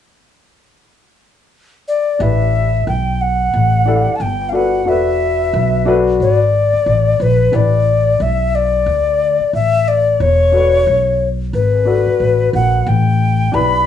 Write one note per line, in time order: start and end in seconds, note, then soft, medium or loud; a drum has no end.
1.88 2.23 D5 medium
2.19 2.83 A1 medium
2.19 2.69 D4 medium
2.19 2.69 E4 medium
2.19 2.70 G4 medium
2.19 2.70 B4 medium
2.19 2.87 E5 medium
2.87 3.50 B1 medium
2.87 3.23 G5 medium
3.21 4.17 F#5 medium
3.54 4.04 A1 medium
3.85 4.11 D4 medium
3.85 4.12 E4 medium
3.85 4.12 G4 medium
3.85 4.13 A4 medium
4.07 muted upright bass stroke soft
4.16 4.23 A5 medium
4.20 4.87 G1 medium
4.20 4.51 G5 medium
4.49 4.78 D4 medium
4.49 4.79 F#4 medium
4.49 4.57 F5 medium
4.54 4.79 A4 medium
4.54 4.79 B4 medium
4.54 4.90 F#5 medium
4.85 5.50 E1 medium
4.85 5.81 D4 medium
4.85 5.81 F#4 medium
4.85 5.82 A4 medium
4.85 5.82 B4 medium
4.85 5.95 E5 medium
5.53 6.17 B1 medium
5.85 6.35 D4 medium
5.85 6.36 F#4 medium
5.85 6.36 A4 medium
5.85 6.37 B4 medium
6.20 6.71 G#1 medium
6.20 7.24 D5 medium
6.74 muted upright bass stroke soft
6.86 7.18 A1 medium
7.20 7.52 A#1 medium
7.20 7.57 B4 medium
7.51 8.16 A1 medium
7.51 7.78 D4 medium
7.51 7.78 E4 soft
7.51 7.79 G4 medium
7.51 7.79 B4 medium
7.51 8.24 D5 medium
8.20 8.83 B1 medium
8.20 8.57 E5 medium
8.55 9.54 D5 medium
8.86 9.37 D2 medium
9.40 muted upright bass stroke soft
9.53 10.22 A1 medium
9.53 9.90 E5 medium
9.88 10.23 D5 medium
10.20 10.83 E1 medium
10.20 11.28 C#5 medium
10.52 10.78 D4 medium
10.52 10.78 F#4 medium
10.52 10.79 A4 medium
10.52 10.79 B4 medium
10.87 11.50 B1 medium
11.53 12.04 G#1 medium
11.53 12.50 B4 medium
11.85 12.81 D4 medium
11.85 12.81 F#4 medium
11.85 12.82 A4 medium
11.85 12.82 B4 medium
12.06 muted upright bass stroke soft
12.20 12.52 A1 medium
12.53 12.85 A#1 medium
12.53 12.89 F#5 medium
12.87 13.50 A1 loud
12.87 13.56 G5 medium
13.52 13.87 B1 medium
13.52 13.87 D4 medium
13.52 13.87 E4 medium
13.52 13.87 G4 medium
13.52 13.87 B4 medium
13.52 13.87 B5 medium